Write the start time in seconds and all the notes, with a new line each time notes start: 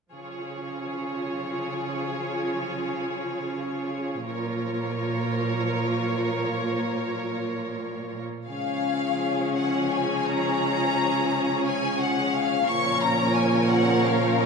0.13 C#3 F3 F4 G#4 C#5
4.25 A#2 F3 F4 A#4 C#5
8.47 C#3 F3 G#3 C#4 G#4 C#5 F5
9.57 F#5
9.92 G#5
10.27 A#5
11.66 G#5
11.98 F#5
12.35 F5
12.67 A#2 C#3 F3 C#4 A#4 C#5 C#6
13.01 A#5
13.35 G#5
13.70 F#5
14.06 F5
14.40 D#5